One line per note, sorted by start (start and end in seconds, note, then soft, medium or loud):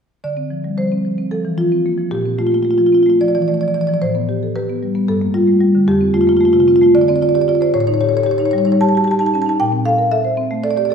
0.24 2.07 D3 soft
0.24 0.76 D5 medium
0.37 0.59 C4 soft
0.50 0.72 F3 soft
0.64 0.78 G3 soft
0.77 0.99 F3 soft
0.77 1.29 C5 medium
0.92 1.12 C4 soft
1.05 1.26 F3 soft
1.18 1.39 C4 soft
1.31 1.52 F3 soft
1.31 1.57 A4 medium
1.45 1.58 E3 soft
1.58 1.79 F3 soft
1.58 2.09 F4 medium
1.72 1.93 C4 soft
1.86 1.98 A#3 soft
1.98 2.11 F3 soft
2.11 3.98 A#2 soft
2.11 2.37 G4 medium
2.26 2.46 C4 soft
2.38 2.60 A3 soft
2.38 2.47 F4 medium
2.47 2.54 F4 soft
2.52 2.65 A#3 soft
2.52 2.63 F4 medium
2.63 2.87 A3 soft
2.63 2.71 F4 soft
2.71 2.78 F4 soft
2.78 3.01 F3 soft
2.78 2.86 F4 soft
2.86 2.94 F4 soft
2.92 3.15 C4 soft
2.92 3.03 F4 soft
3.03 3.29 A3 soft
3.03 3.10 F4 soft
3.10 3.18 F4 soft
3.21 3.43 F3 soft
3.21 3.28 D5 medium
3.28 3.35 D5 medium
3.35 3.48 E3 soft
3.35 3.42 D5 medium
3.42 3.48 D5 medium
3.48 3.70 A3 soft
3.48 3.54 D5 medium
3.54 3.61 D5 medium
3.61 3.84 F3 soft
3.61 3.68 D5 medium
3.68 3.74 D5 medium
3.74 3.89 E3 soft
3.74 3.81 D5 medium
3.81 3.87 D5 medium
3.87 4.02 F3 soft
3.87 3.94 D5 medium
3.94 3.98 D5 medium
4.02 5.04 A2 soft
4.02 4.53 C5 medium
4.15 4.36 B3 soft
4.29 4.50 G4 soft
4.43 4.55 A4 soft
4.56 4.76 G4 soft
4.56 5.06 B4 medium
4.69 4.90 B3 soft
4.83 5.03 G3 soft
4.95 5.08 B3 soft
5.08 5.85 G2 medium
5.08 5.33 A4 medium
5.21 5.42 A#3 soft
5.34 5.55 G3 soft
5.34 5.85 F4 medium
5.48 5.60 A3 soft
5.61 5.82 G3 soft
5.75 5.87 D3 soft
5.88 6.92 F2 medium
5.88 6.13 G4 medium
6.01 6.22 C4 soft
6.14 6.35 A3 soft
6.14 6.21 F4 medium
6.21 6.29 F4 medium
6.27 6.40 A#3 soft
6.27 6.37 F4 medium
6.37 6.62 A3 soft
6.37 6.45 F4 medium
6.45 6.53 F4 medium
6.53 6.75 C3 soft
6.53 6.60 F4 medium
6.60 6.68 F4 medium
6.68 6.89 C4 soft
6.68 6.76 F4 medium
6.76 6.83 F4 medium
6.82 6.95 A3 soft
6.82 6.91 F4 medium
6.95 7.71 D3 medium
6.95 7.01 D5 medium
7.01 7.08 D5 medium
7.08 7.29 C4 soft
7.08 7.16 D5 medium
7.16 7.22 D5 medium
7.22 7.42 F4 soft
7.22 7.29 D5 medium
7.29 7.35 D5 medium
7.35 7.47 G4 soft
7.35 7.42 D5 medium
7.42 7.49 D5 medium
7.48 7.68 F4 soft
7.48 7.55 D5 medium
7.55 7.62 D5 medium
7.61 7.74 C5 soft
7.61 7.70 D5 medium
7.74 9.55 A2 medium
7.74 7.80 C#5 medium
7.80 7.87 C#5 medium
7.87 8.08 D#4 soft
7.87 7.94 C#5 medium
7.94 8.01 C#5 medium
8.01 8.21 G4 soft
8.01 8.09 C#5 medium
8.09 8.17 C#5 medium
8.13 8.26 A4 soft
8.13 8.24 C#5 medium
8.24 8.47 G4 medium
8.24 8.31 C#5 medium
8.31 8.38 C#5 medium
8.38 8.61 D#4 soft
8.38 8.46 C#5 medium
8.46 8.51 C#5 medium
8.51 8.75 G3 soft
8.51 8.58 C#5 medium
8.58 8.65 C#5 medium
8.65 8.88 D#4 soft
8.65 8.72 C#5 medium
8.72 8.76 C#5 medium
8.81 9.02 G4 medium
8.81 8.89 A5 medium
8.89 8.97 A5 medium
8.95 9.07 F#4 soft
8.95 9.04 A5 medium
9.04 9.28 G4 soft
9.04 9.11 A5 medium
9.11 9.19 A5 medium
9.19 9.41 D#4 medium
9.19 9.26 A5 medium
9.26 9.35 A5 medium
9.34 9.46 C#4 soft
9.34 9.42 A5 medium
9.42 9.49 A5 medium
9.46 9.59 D#4 soft
9.46 9.56 A5 medium
9.60 10.95 A#2 medium
9.60 9.84 G5 medium
9.72 9.93 C4 soft
9.85 10.06 A4 soft
9.85 10.11 F5 medium
9.98 10.12 A#4 soft
10.12 10.33 A4 soft
10.12 10.62 E5 medium
10.25 10.46 C5 soft
10.37 10.59 C4 soft
10.51 10.72 A3 soft
10.63 10.85 A4 medium
10.63 10.71 D5 medium
10.71 10.77 D5 medium
10.77 10.90 G4 soft
10.77 10.85 D5 medium
10.85 10.95 D5 medium
10.90 10.95 A4 soft